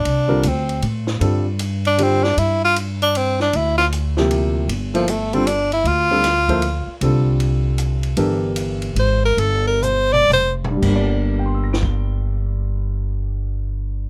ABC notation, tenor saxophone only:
X:1
M:3/4
L:1/8
Q:"Swing" 1/4=155
K:Gdor
V:1 name="Tenor saxophone"
D2 C2 z2 | z3 D C D | E F z D C D | E F z4 |
z F, A, C D E | F6 | z6 | z4 c B |
A B c d c z | z6 | z6 |]